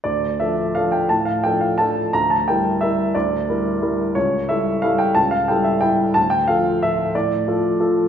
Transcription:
\new Staff \with { instrumentName = "Upright piano" } { \time 3/4 \key d \minor \tempo 4 = 178 << { d''4 e''4 f''8 g''8 | a''8 f''8 g''8 f''8 a''4 | bes''8 a''8 g''4 e''4 | d''2~ d''8 r8 |
cis''4 e''4 f''8 g''8 | a''8 f''8 g''8 e''8 g''4 | a''8 g''8 f''4 e''4 | d''2~ d''8 r8 | } \\ { d,4 <f d' a'>4 <f d' a'>4 | a,4 <f d' a'>4 <f d' a'>4 | d,4 <g e' bes'>4 <g e' bes'>4 | d,4 <g e' bes'>4 <g e' bes'>4 |
cis,4 <g e' a'>4 <g e' a'>4 | cis,4 <g e' a'>4 <g e' a'>4 | d,4 <f f' a'>4 <f f' a'>4 | a,4 <f f' a'>4 <f f' a'>4 | } >> }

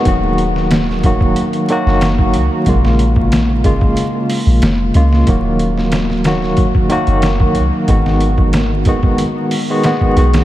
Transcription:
<<
  \new Staff \with { instrumentName = "Tine electric piano" } { \time 4/4 \key ees \minor \tempo 4 = 92 <ees ges bes ges'>4. <ees ges bes ges'>4 <ees ges bes ges'>4. | <des aes bes f'>4. <des aes bes f'>2 <des aes bes f'>16 r16 | <ees ges bes ges'>4. <ees ges bes ges'>4 <ees ges bes ges'>4. | <ees aes ces' ges'>4. <ees aes ces' ges'>4~ <ees aes ces' ges'>16 <ees aes ces' ges'>16 <ees aes ces' ges'>8 <ees aes ces' ges'>8 | }
  \new Staff \with { instrumentName = "808-style bass" } { \clef bass \time 4/4 \key ees \minor ees,,2 r8. ges,,8. des,16 r16 | bes,,2 r8. bes,,16 f,,8 des,8 | ees,,2 r8. ges,,8. des,16 r16 | aes,,2 r4. ces,8 | }
  \new DrumStaff \with { instrumentName = "Drums" } \drummode { \time 4/4 <hh bd>8 hh16 sn16 <hh sn>16 sn16 <hh bd>16 bd16 hh16 hh16 hh16 sn16 <hh sn>16 bd16 hh8 | <hh bd>16 sn16 hh16 bd16 <hh sn>8 <hh bd>16 bd16 hh8 hho8 <hh sn>8 hh16 sn16 | <hh bd>8 hh16 sn16 <hh sn>16 sn16 <hh sn>16 sn16 <hh bd>16 bd16 hh16 hh16 <hh sn>16 bd16 hh8 | <hh bd>16 sn16 hh16 bd16 <hh sn>8 <hh bd>16 bd16 hh8 hho8 <hh sn>16 bd16 hh16 <hh sn>16 | }
>>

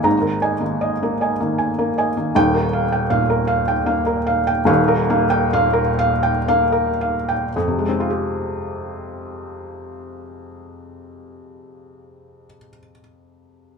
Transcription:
<<
  \new Staff \with { instrumentName = "Felt piano" } { \time 3/4 \key f \minor \tempo 4 = 64 << { r2. | g''8 r2 r8 | r2. | <f, c aes c' f' g'>2.~ |
<f, c aes c' f' g'>2. | } \\ { <ees bes''>16 bes'16 <ees'' aes''>16 ees16 ees''16 bes'16 <ees'' aes''>16 ees16 aes''16 bes'16 <ees'' aes''>16 ees16 | r16 bes'16 f''16 g''16 f''16 bes'16 f''16 g''16 f''16 bes'16 f''16 g''16 | f''16 bes'16 f''16 g''16 f''16 bes'16 f''16 g''16 f''16 bes'16 f''16 g''16 | r2. |
r2. | } >> }
  \new Staff \with { instrumentName = "Felt piano" } { \clef bass \time 3/4 \key f \minor <aes,, aes, bes>16 ees8 bes8 bes8 bes8 bes8 bes16 | <ees,, ees,>4 bes,8. r16 bes8. r16 | <ees,, ees,>8 bes8 bes,8. r16 bes8. r16 | r2. |
r2. | }
>>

